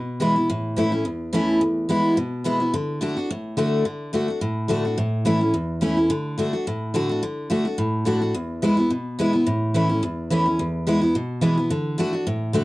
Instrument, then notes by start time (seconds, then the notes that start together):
steel-string acoustic guitar
Already playing: B2
0.20 E3 G#3 B3 E4
0.36 E4
0.50 A2
0.76 E3 A3 C#4 E4
0.92 C#4 E4
1.05 E2
1.33 E3 A3 C#4 E4
1.61 E2
1.89 E3 G#3 B3 E4
2.17 B2
2.44 E3 G#3 B3 E4
2.60 B3 E4
2.74 D3
3.01 D3 A3 D4 F#4
3.17 D4 F#4
3.31 A2
3.57 D3 A3 D4 F#4
3.85 D3
4.13 D3 A3 D4 F#4
4.28 D4 F#4
4.41 A2
4.68 D3 A3 D4 F#4
4.85 D4 F#4
4.98 A2
5.25 E3 A3 C#4 E4
5.41 C#4 E4
5.54 E2
5.81 E3 A3 C#4 E4
5.97 C#4 E4
6.10 D3
6.38 D3 A3 D4 F#4
6.53 D4 F#4
6.67 A2
6.94 D3 A3 D4 F#4
7.09 D4 F#4
7.23 D3
7.50 D3 A3 D4 F#4
7.65 D4 F#4
7.78 A2
8.05 D3 A3 D4 F#4
8.22 D4 F#4
8.34 E2
8.62 E3 G#3 B3 E4
8.77 B3 E4
8.90 B2
9.19 E3 G#3 B3 E4
9.33 E4
9.47 A2
9.74 E3 A3 C#4 E4
9.89 C#4 E4
10.03 E2
10.30 E3 A3 C#4 E4
10.46 C#4 E4
10.59 E2
10.87 E3 G#3 B3 E4
11.01 B3 E4
11.15 B2
11.41 E3 G#3 B3 E4
11.57 B3 E4
11.70 D3
11.98 D3 A3 D4 F#4
12.13 D4 F#4
12.27 A2
12.53 D3 A3 D4 F#4